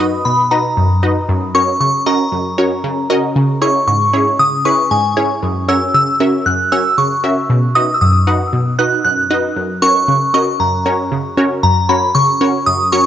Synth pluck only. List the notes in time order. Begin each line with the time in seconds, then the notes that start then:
Already playing: F#2
0.00 D#4 F#4 B4 D#5
0.25 B2
0.51 D#4 F#4 B4 D#5
0.77 F#2
1.03 D#4 F#4 B4 D#5
1.29 F#2
1.55 C#4 F#4 A#4 C#5
1.80 C#3
2.06 C#4 F#4 A#4 D#5
2.32 F#2
2.58 C#4 F#4 A#4 C#5
2.84 C#3
3.10 C#4 F#4 A#4 D#5
3.36 C#3
3.62 C#4 E4 G#4 C#5
3.87 G#2
4.13 C#4 E4 G#4 C#5
4.39 C#3
4.65 C#4 E4 G#4 B4
4.91 G#2
5.17 C#4 E4 G#4 C#5
5.43 F#2
5.69 C#4 F#4 A#4 C#5
5.94 C#3
6.20 C#4 F#4 A#4 E5
6.46 F#2
6.72 C#4 F#4 A#4 C#5
6.98 C#3
7.24 C#4 F#4 A#4 E5
7.50 B2
7.76 D#4 F#4 B4 D#5
8.01 F#2
8.27 D#4 F#4 B4 F#5
8.53 B2
8.79 D#4 F#4 B4 D#5
9.05 F#2
9.31 D#4 F#4 B4 D#5
9.56 F#2
9.82 C#4 F#4 A#4 C#5
10.08 C#3
10.34 C#4 F#4 A#4 D#5
10.60 F#2
10.86 C#4 F#4 A#4 C#5
11.12 C#3
11.37 C#4 F#4 A#4 C#5
11.63 F#2
11.89 C#4 F#4 A#4 C#5
12.15 C#3
12.41 C#4 F#4 A#4 C#5
12.67 F#2
12.93 C#4 F#4 A#4 C#5